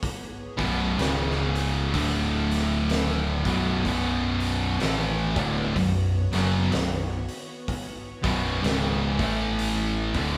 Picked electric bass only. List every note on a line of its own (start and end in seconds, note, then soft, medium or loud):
0.59 0.96 B0 loud
0.99 1.90 C#1 medium
1.95 3.42 D1 medium
3.45 3.82 B0 medium
3.86 4.77 B0 loud
4.81 5.32 A1 medium
5.36 5.73 D1 loud
5.76 6.28 B0 medium
6.34 6.70 F#1 medium
6.74 7.25 B0 medium
8.24 8.61 B0 loud
8.63 9.15 C#1 medium
9.19 10.11 A1 loud
10.15 10.38 D1 medium